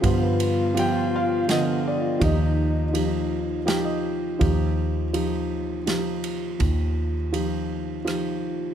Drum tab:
RD |xxx-x-|x-x-x-|x-x-xx|x-x-x-|
SD |----o-|----o-|----o-|----r-|
BD |o-----|o-----|o-----|o-----|